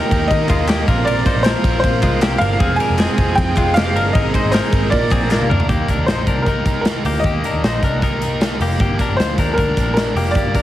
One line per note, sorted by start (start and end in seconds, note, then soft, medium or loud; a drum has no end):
0.00 0.12 D#3 medium
0.00 0.12 A#3 medium
0.00 0.85 A#3 medium
0.00 0.12 D#4 medium
0.00 0.47 D#4 medium
0.00 0.86 D#4 medium
0.00 0.11 G4 medium
0.00 0.86 G4 medium
0.00 0.47 A#4 medium
0.00 0.86 A#4 medium
0.00 0.32 G5 loud
0.11 0.28 D#2 medium
0.11 0.30 A#3 medium
0.11 0.31 D#4 medium
0.11 0.31 G4 medium
0.11 kick medium
0.11 ride medium
0.28 0.49 D#3 medium
0.28 0.47 D#3 loud
0.28 0.50 A#3 medium
0.28 0.83 D#5 loud
0.28 kick medium
0.28 ride medium
0.32 0.49 D#4 medium
0.32 0.47 G4 medium
0.48 0.82 D#2 medium
0.48 0.69 G#3 medium
0.48 0.68 A#3 soft
0.48 0.68 D#4 soft
0.48 0.68 F4 medium
0.48 0.69 G4 medium
0.48 kick medium
0.48 clap medium
0.48 ride medium
0.68 0.88 D#3 medium
0.68 0.88 A#3 medium
0.68 0.89 A#3 medium
0.68 0.88 D#4 medium
0.68 0.88 G4 medium
0.68 0.87 G4 medium
0.68 snare loud
0.68 clap loud
0.68 ride medium
0.87 1.21 A#1 loud
0.87 2.57 A#3 medium
0.87 1.07 A#3 medium
0.87 2.57 C4 medium
0.87 1.07 C4 medium
0.87 1.07 F4 medium
0.87 2.57 F4 medium
0.87 1.06 A#4 medium
0.87 2.58 A#4 medium
0.87 kick loud
0.87 ride medium
1.05 1.27 A#2 medium
1.05 1.27 F3 medium
1.05 1.27 A#3 medium
1.05 1.26 C4 medium
1.05 1.27 F4 medium
1.05 1.26 A#4 loud
1.05 1.46 D5 medium
1.05 ride medium
1.09 1.25 F4 medium
1.26 1.44 A#3 soft
1.26 1.44 C4 medium
1.26 1.46 D#4 medium
1.26 1.45 F4 medium
1.26 1.45 C5 medium
1.26 kick medium
1.26 ride medium
1.36 1.52 A#1 loud
1.43 1.64 A#2 medium
1.43 1.65 F3 medium
1.43 1.65 A#3 medium
1.43 1.63 C4 medium
1.43 2.00 F4 medium
1.43 1.62 F4 medium
1.43 1.99 A#4 medium
1.43 1.78 C5 loud
1.43 snare loud
1.43 clap loud
1.43 ride medium
1.63 1.81 A#1 loud
1.63 1.83 A#3 soft
1.63 1.83 C4 medium
1.63 1.83 F4 medium
1.63 kick medium
1.63 ride medium
1.80 2.03 F3 medium
1.80 2.41 C5 loud
1.84 2.00 A#2 loud
1.84 2.03 A#3 medium
1.84 2.02 C4 medium
1.84 2.01 F4 medium
1.84 kick loud
1.84 ride medium
2.02 2.35 C2 medium
2.02 2.22 G#3 medium
2.02 2.21 A#3 soft
2.02 2.22 C4 medium
2.02 2.22 F4 medium
2.02 kick medium
2.02 clap medium
2.02 ride medium
2.22 2.41 A#2 medium
2.22 2.42 F3 medium
2.22 2.42 A#3 medium
2.22 2.41 C4 medium
2.22 2.39 F4 medium
2.22 2.41 G4 medium
2.22 snare loud
2.22 clap loud
2.22 ride medium
2.38 2.58 G1 loud
2.38 2.61 D4 medium
2.38 2.60 F4 soft
2.38 2.59 A#4 medium
2.38 2.80 F5 loud
2.38 ride medium
2.42 2.61 A#3 soft
2.42 2.60 C4 soft
2.59 2.77 F1 loud
2.59 2.80 F2 medium
2.59 2.80 C3 medium
2.59 2.80 F3 medium
2.59 4.10 G#3 medium
2.59 2.79 G#3 loud
2.59 4.11 C4 medium
2.59 2.80 C4 medium
2.59 2.79 C4 medium
2.59 4.11 F4 medium
2.59 2.77 G4 loud
2.59 2.80 G#4 loud
2.59 4.11 G#4 medium
2.59 kick loud
2.59 ride medium
2.76 2.99 C4 medium
2.76 2.98 G4 medium
2.76 3.37 G#5 loud
2.76 ride medium
2.80 2.98 F3 medium
2.80 2.98 G#3 medium
2.80 3.00 D4 medium
2.80 2.99 A#4 medium
2.89 3.06 F1 loud
2.98 3.18 F2 medium
2.98 3.18 C3 medium
2.98 3.18 F3 medium
2.98 3.17 G#3 medium
2.98 3.17 C4 medium
2.98 3.54 C4 medium
2.98 3.16 G4 medium
2.98 3.53 G#4 medium
2.98 snare loud
2.98 clap medium
2.98 ride medium
3.17 3.34 F1 medium
3.17 3.35 F3 medium
3.17 3.36 G#3 soft
3.17 3.37 C4 medium
3.17 3.37 G4 medium
3.17 kick medium
3.17 ride medium
3.35 3.54 F2 loud
3.35 3.56 F3 medium
3.35 3.57 G#3 medium
3.35 3.55 C4 medium
3.35 3.55 G4 medium
3.35 3.76 G5 loud
3.35 kick medium
3.35 ride medium
3.56 3.95 F1 medium
3.56 3.75 F3 soft
3.56 3.77 G#3 medium
3.56 3.75 G#3 soft
3.56 3.75 C4 medium
3.56 3.76 F4 medium
3.56 3.76 G4 medium
3.56 kick medium
3.56 clap medium
3.56 ride medium
3.74 3.95 F2 medium
3.74 3.95 C3 medium
3.74 3.95 F3 medium
3.74 3.95 G#3 medium
3.74 3.94 C4 medium
3.74 3.96 C4 medium
3.74 3.95 G4 medium
3.74 3.93 G4 medium
3.74 4.15 F5 loud
3.74 snare loud
3.74 clap medium
3.74 ride medium
3.94 4.11 G1 loud
3.94 4.15 F3 soft
3.94 4.14 G#3 medium
3.94 4.15 C4 medium
3.94 4.15 D4 medium
3.94 4.14 G4 medium
3.94 4.14 A#4 medium
3.94 ride medium
4.13 4.31 G#1 loud
4.13 4.34 G#2 medium
4.13 4.34 D#3 medium
4.13 4.90 G#3 medium
4.13 4.34 G#3 medium
4.13 4.90 C4 medium
4.13 4.35 C4 medium
4.13 4.91 D#4 medium
4.13 4.34 D#4 medium
4.13 4.33 D#4 medium
4.13 4.91 G#4 medium
4.13 4.33 G#4 medium
4.13 4.34 A#4 loud
4.13 4.53 D#5 medium
4.13 kick loud
4.13 ride medium
4.34 4.53 G#3 soft
4.34 4.54 C4 medium
4.34 4.53 D#4 medium
4.34 4.54 D#4 medium
4.34 4.53 G#4 medium
4.34 4.53 C5 medium
4.34 kick medium
4.34 ride medium
4.44 4.60 G#1 medium
4.51 4.73 G#2 medium
4.51 4.73 D#3 medium
4.51 4.73 G#3 medium
4.51 4.73 C4 medium
4.51 5.08 D#4 medium
4.51 4.73 D#4 medium
4.51 4.72 G#4 medium
4.51 5.08 A#4 medium
4.51 4.88 C5 medium
4.51 snare loud
4.51 clap medium
4.51 ride medium
4.73 4.89 G#1 medium
4.73 4.93 G#3 soft
4.73 4.93 C4 soft
4.73 4.92 D#4 medium
4.73 4.92 G#4 medium
4.73 kick loud
4.73 ride medium
4.90 5.08 A#2 medium
4.90 5.12 F3 medium
4.90 5.67 A#3 medium
4.90 5.12 A#3 medium
4.90 5.67 D4 medium
4.90 5.12 D4 medium
4.90 5.67 F4 medium
4.90 5.68 A#4 medium
4.90 5.45 D5 medium
4.90 kick medium
4.90 ride medium
4.95 5.10 A#4 medium
5.11 5.44 A#1 medium
5.11 5.30 A#3 soft
5.11 5.31 C4 medium
5.11 5.30 D4 soft
5.11 5.31 G#4 medium
5.11 5.30 A#4 medium
5.11 kick medium
5.11 clap medium
5.11 ride medium
5.30 5.49 A#2 medium
5.30 5.50 F3 medium
5.30 5.50 A#3 medium
5.30 5.49 D4 medium
5.30 5.50 F4 medium
5.30 5.48 A#4 medium
5.30 snare medium
5.30 clap medium
5.42 high tom medium
5.49 5.66 D2 medium
5.49 5.69 A#3 soft
5.49 5.69 D4 medium
5.49 5.70 D4 medium
5.49 5.69 A#4 medium
5.49 mid tom medium
5.60 floor tom loud
5.69 5.85 D#2 loud
5.69 5.88 D#3 medium
5.69 5.89 A#3 medium
5.69 5.89 D#4 medium
5.69 5.88 G4 medium
5.69 5.87 G4 medium
5.69 kick loud
5.69 closed hi-hat medium
5.88 6.08 A#3 soft
5.88 6.08 D4 medium
5.88 6.09 D#4 medium
5.88 6.08 G4 medium
5.88 6.08 A#4 medium
5.88 kick medium
5.88 closed hi-hat medium
5.97 6.06 D#2 medium
6.06 6.24 A#1 medium
6.06 6.27 D#3 medium
6.06 6.28 A#3 medium
6.06 6.28 D#4 medium
6.06 6.27 D#4 medium
6.06 6.26 G4 medium
6.06 6.47 C5 medium
6.06 6.27 C5 medium
6.06 snare loud
6.06 closed hi-hat medium
6.26 7.00 C2 medium
6.26 6.46 A#3 soft
6.26 6.47 D4 medium
6.26 6.46 D#4 soft
6.26 6.46 G4 soft
6.26 6.47 A#4 medium
6.26 kick medium
6.26 closed hi-hat medium
6.42 6.66 D#3 medium
6.42 6.80 A#4 medium
6.46 6.66 A#3 medium
6.46 6.65 D#4 medium
6.46 7.02 D#4 medium
6.46 6.64 G4 medium
6.46 7.02 A#4 medium
6.46 kick medium
6.46 closed hi-hat medium
6.65 6.85 A#3 soft
6.65 6.85 D#4 soft
6.65 6.85 G4 soft
6.65 kick medium
6.65 closed hi-hat medium
6.81 7.23 A#4 medium
6.81 closed hi-hat medium
6.85 7.05 D#3 medium
6.85 7.05 A#3 medium
6.85 7.05 D#4 medium
6.85 7.03 G4 medium
6.85 snare loud
7.04 7.21 D2 medium
7.04 7.25 A#3 medium
7.04 7.24 A#3 soft
7.04 7.24 D#4 soft
7.04 7.24 G4 medium
7.04 7.25 G4 medium
7.04 open hi-hat medium
7.20 7.96 D#5 medium
7.24 7.41 D#2 loud
7.24 7.44 D#3 medium
7.24 7.44 A#3 medium
7.24 7.45 A#3 medium
7.24 7.43 D#4 medium
7.24 7.44 G4 medium
7.24 7.42 G4 medium
7.24 kick medium
7.24 closed hi-hat medium
7.44 7.62 A#3 soft
7.44 7.64 D4 medium
7.44 7.63 D#4 soft
7.44 7.63 G4 soft
7.44 7.64 A#4 medium
7.44 closed hi-hat medium
7.53 7.61 D#2 medium
7.63 7.79 A#1 medium
7.63 7.82 D#3 medium
7.63 7.83 A#3 medium
7.63 7.83 D#4 medium
7.63 7.81 G4 medium
7.63 7.83 C5 medium
7.63 snare loud
7.63 closed hi-hat medium
7.83 8.57 C2 medium
7.83 8.01 A#3 soft
7.83 8.03 D4 medium
7.83 8.01 D#4 medium
7.83 8.02 G4 medium
7.83 8.02 A#4 medium
7.83 kick medium
7.83 closed hi-hat medium
8.01 8.21 D#3 medium
8.01 8.21 A#3 medium
8.01 8.21 D#4 medium
8.01 8.58 D#4 medium
8.01 8.19 G4 loud
8.01 8.57 A#4 medium
8.01 kick medium
8.01 closed hi-hat medium
8.21 8.41 A#3 soft
8.21 8.41 D#4 soft
8.21 8.40 G4 soft
8.21 closed hi-hat medium
8.40 8.60 D#3 medium
8.40 8.60 A#3 medium
8.40 8.59 D#4 medium
8.40 8.58 G4 medium
8.40 snare loud
8.40 closed hi-hat medium
8.59 8.77 F1 medium
8.59 8.79 A#3 soft
8.59 8.81 A#3 medium
8.59 8.80 D#4 soft
8.59 8.79 G4 soft
8.59 8.80 G4 medium
8.59 open hi-hat medium
8.79 8.96 G1 loud
8.79 8.99 G2 medium
8.79 8.99 D3 medium
8.79 9.00 F3 medium
8.79 9.00 A#3 medium
8.79 9.00 D4 medium
8.79 9.00 G4 medium
8.79 8.99 G4 loud
8.79 kick loud
8.79 closed hi-hat medium
8.99 9.17 F3 soft
8.99 9.18 A#3 medium
8.99 9.19 D4 medium
8.99 9.19 G4 medium
8.99 9.19 A#4 medium
8.99 kick medium
8.99 closed hi-hat medium
9.09 9.17 G1 medium
9.17 9.35 D2 medium
9.17 9.38 F3 soft
9.17 9.38 A#3 medium
9.17 9.37 D4 medium
9.17 9.39 F4 medium
9.17 9.36 G4 medium
9.17 9.58 C5 medium
9.17 9.39 C5 medium
9.17 snare loud
9.17 closed hi-hat medium
9.37 9.55 D#2 medium
9.37 9.57 F3 soft
9.37 9.58 A#3 soft
9.37 9.58 D4 medium
9.37 9.57 G4 medium
9.37 9.57 A#4 medium
9.37 kick medium
9.37 closed hi-hat medium
9.54 9.74 D2 medium
9.54 9.92 A#4 medium
9.58 9.77 G2 medium
9.58 9.77 D3 medium
9.58 9.77 F3 medium
9.58 9.78 A#3 medium
9.58 9.77 D4 medium
9.58 10.13 D4 medium
9.58 9.76 G4 medium
9.58 10.13 A#4 medium
9.58 kick medium
9.58 closed hi-hat medium
9.77 10.10 A#1 medium
9.77 9.95 F3 soft
9.77 9.96 A#3 soft
9.77 9.97 D4 soft
9.77 9.96 G4 medium
9.77 kick medium
9.77 closed hi-hat medium
9.94 10.16 F3 medium
9.94 10.16 A#3 medium
9.94 10.35 A#4 medium
9.94 snare loud
9.94 closed hi-hat medium
9.98 10.16 D4 medium
9.98 10.15 G4 medium
10.15 10.32 F1 medium
10.15 10.35 F3 soft
10.15 10.36 A#3 medium
10.15 10.36 A#3 soft
10.15 10.36 D4 medium
10.15 10.35 G4 medium
10.15 open hi-hat medium
10.31 10.62 D5 medium
10.35 10.52 G1 medium
10.35 10.55 G2 medium
10.35 10.55 D3 medium
10.35 10.55 F3 medium
10.35 10.55 A#3 medium
10.35 10.56 A#3 medium
10.35 10.55 D4 medium
10.35 10.55 G4 medium
10.35 10.54 G4 medium
10.35 kick loud
10.35 closed hi-hat medium
10.55 10.62 F3 soft
10.55 10.62 A#3 soft
10.55 10.62 D4 medium
10.55 10.62 D4 soft
10.55 10.62 G4 medium
10.55 10.62 A#4 medium
10.55 kick medium
10.55 closed hi-hat medium